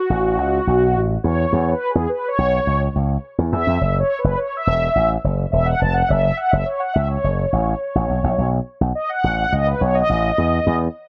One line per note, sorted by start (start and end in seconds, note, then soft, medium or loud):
0.00 1.00 F#4 medium
0.10 0.38 A1 medium
0.38 0.59 C#2 medium
0.67 0.95 B1 medium
0.95 1.16 A1 medium
1.24 1.44 E2 loud
1.24 1.73 C#5 medium
1.53 1.73 E2 loud
1.72 1.91 B4 medium
1.90 2.10 G#4 medium
1.95 2.05 E2 loud
2.09 2.29 B4 medium
2.28 2.82 C#5 medium
2.38 2.59 B1 medium
2.67 2.87 C#2 medium
2.96 3.16 C#2 medium
3.38 3.49 E2 medium
3.52 3.63 E2 loud
3.52 3.97 E5 loud
3.67 3.77 F2 medium
3.81 4.02 F#1 loud
4.00 4.19 C#5 loud
4.19 4.39 B4 medium
4.24 4.34 F#1 loud
4.38 4.56 C#5 medium
4.57 5.10 E5 loud
4.67 4.87 E1 medium
4.95 5.16 A1 medium
5.24 5.45 F#1 medium
5.52 5.73 E1 medium
5.52 5.67 E5 loud
5.66 5.79 F#5 loud
5.80 6.02 F1 medium
5.80 5.94 A5 loud
5.94 6.09 F#5 loud
6.08 6.30 F#1 loud
6.08 6.22 E5 loud
6.23 6.38 E5 loud
6.37 6.52 F#5 loud
6.51 6.63 F#1 medium
6.51 6.66 E5 loud
6.65 6.81 C#5 medium
6.80 6.95 F#5 medium
6.94 7.16 C#2 loud
6.94 7.08 E5 medium
7.08 8.48 C#5 medium
7.24 7.44 F#1 medium
7.53 7.73 A1 medium
7.95 8.06 A1 medium
8.10 8.20 B1 loud
8.24 8.34 A#1 medium
8.38 8.59 B1 loud
8.81 8.91 B1 medium
8.95 9.10 D#5 loud
9.09 9.37 F#5 loud
9.24 9.44 A1 medium
9.38 9.53 F#5 loud
9.52 9.73 C#2 medium
9.52 9.67 D#5 loud
9.66 9.81 B4 medium
9.81 10.01 B1 medium
9.81 9.95 C#5 medium
9.95 10.77 D#5 medium
10.09 10.30 A1 medium
10.38 10.59 E2 loud
10.67 10.87 E2 loud